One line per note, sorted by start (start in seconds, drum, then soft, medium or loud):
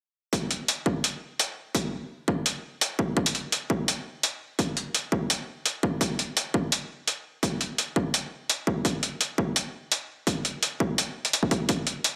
0.33 kick loud
0.33 closed hi-hat medium
0.51 closed hi-hat soft
0.68 closed hi-hat medium
0.86 kick medium
1.04 closed hi-hat medium
1.39 closed hi-hat medium
1.75 kick loud
1.75 closed hi-hat medium
2.28 kick medium
2.46 closed hi-hat medium
2.81 closed hi-hat medium
2.99 kick loud
3.17 kick loud
3.26 closed hi-hat medium
3.35 closed hi-hat soft
3.52 closed hi-hat medium
3.70 kick loud
3.88 closed hi-hat medium
4.23 closed hi-hat medium
4.59 kick loud
4.59 closed hi-hat medium
4.77 closed hi-hat soft
4.95 closed hi-hat medium
5.12 kick medium
5.30 closed hi-hat medium
5.66 closed hi-hat medium
5.83 kick loud
6.01 kick loud
6.01 closed hi-hat medium
6.19 closed hi-hat soft
6.37 closed hi-hat medium
6.54 kick medium
6.72 closed hi-hat medium
7.08 closed hi-hat medium
7.43 kick loud
7.43 closed hi-hat medium
7.61 closed hi-hat soft
7.78 closed hi-hat medium
7.96 kick medium
8.14 closed hi-hat medium
8.50 closed hi-hat medium
8.67 kick medium
8.85 kick loud
8.85 closed hi-hat medium
9.03 closed hi-hat soft
9.21 closed hi-hat medium
9.38 kick medium
9.56 closed hi-hat medium
9.92 closed hi-hat medium
10.27 kick loud
10.27 closed hi-hat medium
10.45 closed hi-hat soft
10.63 closed hi-hat medium
10.80 kick medium
10.98 closed hi-hat medium
11.25 closed hi-hat soft
11.33 closed hi-hat medium
11.43 kick medium
11.51 kick medium
11.51 closed hi-hat soft
11.69 kick loud
11.69 closed hi-hat medium
11.87 closed hi-hat soft
12.04 closed hi-hat medium